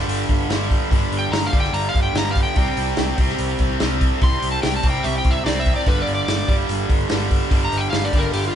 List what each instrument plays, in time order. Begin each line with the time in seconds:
Already playing: overdriven electric guitar G2 D3 G3
0.08 picked electric bass G1, tonewheel organ F4 A4 D5, open hi-hat
0.29 picked electric bass G1, tonewheel organ F4 A4 B4, kick, open hi-hat
0.49 picked electric bass G1, overdriven electric guitar G2 D3, tonewheel organ F4 A4 B4, snare, open hi-hat
0.53 overdriven electric guitar G3
0.71 tonewheel organ F4 A4 B4, kick, open hi-hat
0.91 picked electric bass G1, overdriven electric guitar G2 D3, tonewheel organ F4 A4 B4, kick, open hi-hat
0.95 overdriven electric guitar G3
1.12 picked electric bass G1, tonewheel organ F4 A4 D5, open hi-hat
1.19 electric slide guitar G5
1.32 picked electric bass G1, tonewheel organ F4 A4 B4, electric slide guitar A#5, snare, open hi-hat
1.46 electric slide guitar F5
1.53 picked electric bass G1, overdriven electric guitar G2 D3 G3, tonewheel organ F4 A4 D5, kick, open hi-hat
1.60 electric slide guitar G5
1.64 snare
1.73 picked electric bass G1, tonewheel organ F4 A4 D5, electric slide guitar A#5, open hi-hat
1.89 electric slide guitar F5
1.94 picked electric bass G1, tonewheel organ F4 A4 B4, kick, open hi-hat
2.03 electric slide guitar G5
2.14 picked electric bass G1, overdriven electric guitar G2 D3, tonewheel organ F4 A4 D5, electric slide guitar A#5, snare, open hi-hat
2.19 overdriven electric guitar G3
2.31 electric slide guitar F5
2.35 tonewheel organ F4 A4 B4, kick, open hi-hat
2.43 electric slide guitar G5
2.55 picked electric bass C2, overdriven electric guitar C3 G3 C4, tonewheel organ D4 E4 A#4, kick, open hi-hat
2.77 picked electric bass C2, tonewheel organ D4 E4 C5, open hi-hat
2.97 picked electric bass C2, tonewheel organ D4 E4 A#4, snare, open hi-hat
3.17 picked electric bass C2, overdriven electric guitar C3 G3 C4, tonewheel organ D4 E4 C5, kick, open hi-hat
3.29 snare
3.38 picked electric bass C2, tonewheel organ D4 E4 A#4, open hi-hat
3.59 picked electric bass C2, tonewheel organ D4 E4 A#4, kick, open hi-hat
3.79 picked electric bass C2, overdriven electric guitar C3 G3 C4, tonewheel organ D4 E4 A#4, snare, open hi-hat
4.01 tonewheel organ D4 E4 A4, kick, open hi-hat
4.21 picked electric bass C2, overdriven electric guitar C3 G3, tonewheel organ D4 E4 A#4, electric slide guitar C6, kick, open hi-hat
4.25 overdriven electric guitar C4
4.42 picked electric bass C2, tonewheel organ D4 E4 C5, open hi-hat
4.52 electric slide guitar A5
4.63 picked electric bass C2, tonewheel organ D4 E4 A#4, electric slide guitar G5, snare, open hi-hat
4.76 electric slide guitar A5
4.83 picked electric bass C2, overdriven electric guitar G3 C4, tonewheel organ D4 E4 A#4, kick, open hi-hat
4.87 overdriven electric guitar C3, electric slide guitar G5
5.03 picked electric bass C2, tonewheel organ D4 E4 G4, electric slide guitar E5, open hi-hat
5.18 electric slide guitar G5
5.24 picked electric bass C2, tonewheel organ D4 E4 A#4, kick, open hi-hat
5.31 electric slide guitar E5
5.44 picked electric bass C2, overdriven electric guitar C3 G3, tonewheel organ D4 E4 A#4, electric slide guitar D5, snare, open hi-hat
5.48 overdriven electric guitar C4
5.60 electric slide guitar E5
5.66 tonewheel organ D4 E4 A#4, kick, open hi-hat
5.76 electric slide guitar D5
5.86 picked electric bass G1, overdriven electric guitar G2 D3, tonewheel organ B3 F4 A4, electric slide guitar B4, kick, open hi-hat
5.90 overdriven electric guitar G3
6.02 electric slide guitar D5
6.07 picked electric bass G1, tonewheel organ B3 F4 G4, open hi-hat
6.14 electric slide guitar D5
6.28 picked electric bass G1, tonewheel organ B3 F4 A4, snare, open hi-hat
6.48 picked electric bass G1, overdriven electric guitar G2 D3 G3, tonewheel organ B3 F4 A4, kick, open hi-hat
6.68 picked electric bass G1, tonewheel organ B3 F4 A4, open hi-hat
6.88 picked electric bass G1, tonewheel organ B3 F4 A4, kick, open hi-hat
7.09 picked electric bass G1, overdriven electric guitar G2 D3, tonewheel organ B3 F4 A4, snare, open hi-hat
7.13 overdriven electric guitar G3
7.29 tonewheel organ B3 F4 A4, kick, open hi-hat
7.50 picked electric bass G1, overdriven electric guitar G2 D3 G3, tonewheel organ B3 F4 A4, kick, open hi-hat
7.65 electric slide guitar A#5
7.72 picked electric bass G1, tonewheel organ B3 F4 B4, open hi-hat
7.77 electric slide guitar G5
7.90 picked electric bass G1, tonewheel organ B3 F4, electric slide guitar F5, snare, open hi-hat
7.94 tonewheel organ A4
8.05 electric slide guitar D5
8.12 picked electric bass G1, overdriven electric guitar G2 D3 G3, tonewheel organ B3 F4 A4, kick, open hi-hat
8.19 electric slide guitar A#4
8.33 picked electric bass G1, tonewheel organ B3 F4 A4, electric slide guitar G4, open hi-hat
8.48 electric slide guitar F4